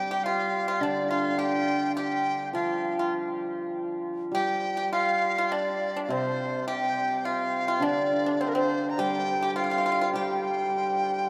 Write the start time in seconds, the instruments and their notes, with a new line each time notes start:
Already playing: hammered dulcimer G3, dizi G5
0.11 pipa G4
0.24 pipa F4, dizi F5
0.68 pipa F4
0.81 hammered dulcimer D3, pipa D4, dizi D5
1.10 pipa F4, dizi F5
1.39 pipa G4, dizi G5
1.95 pipa G4, dizi G5
2.53 hammered dulcimer F3, pipa F4, dizi F5
2.99 pipa F4
4.32 hammered dulcimer G3, pipa G4, dizi G5
4.77 pipa G4
4.93 pipa F4, dizi F5
5.38 pipa F4
5.52 pipa D4, dizi D5
5.96 pipa D4
6.04 dizi D5
6.08 hammered dulcimer C3, pipa C4, dizi C5
6.68 pipa G4, dizi G5
7.19 dizi G5
7.25 pipa F4, dizi F5
7.68 pipa F4
7.80 hammered dulcimer D3, pipa D4, dizi D5
8.26 pipa D4
8.41 pipa C4, dizi C5
8.48 dizi A#4
8.54 pipa C4, dizi C5
8.90 dizi A#5
8.98 hammered dulcimer G3, pipa G4, dizi G5
9.43 pipa G4
9.50 dizi G5
9.56 pipa F4, dizi F5
9.64 pipa F4
9.71 pipa F4
9.78 pipa F4
9.86 pipa F4
9.92 pipa F4
10.01 pipa F4
10.13 hammered dulcimer G3, pipa G4, dizi G5